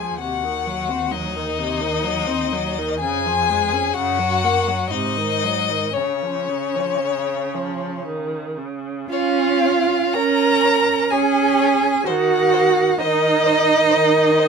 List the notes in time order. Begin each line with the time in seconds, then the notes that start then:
Already playing: C#2 F3 G#4 G#5
0.19 D#2 C3 F#4 F#5
0.43 D#3
0.67 F#3
0.89 C4
1.11 F#3 D#4 D#5
1.36 D#3
1.58 C3
1.81 D#3
2.04 F#3
2.27 C4
2.52 F#3
2.78 D#3
2.99 F2 C#3 G#4 G#5
3.26 F3
3.50 G#3
3.74 C#4
3.94 F#2 C#3 F#4 F#5
4.19 F#3
4.44 A#3
4.67 F#3
4.90 G#2 D#4 D#5
4.94 C3
5.17 D#3
5.43 F#3
5.70 D#3
5.93 C#3 C#4 C#5
6.22 F3
6.48 C#3
6.75 F3
7.02 C#3
7.54 F3
8.06 D#3
8.57 C#3
9.10 C#4 F4 C#5 F5
9.64 C#5
10.14 C#4 A#4 C#5 A#5
10.65 C#5
11.11 C#4 G#4 C#5 G#5
11.59 C#5
12.05 D#3 F#4 C5 F#5
12.53 C5
12.98 D#3 D#4 C5 D#5
13.46 C5
13.90 C5
13.94 D#3
14.38 C5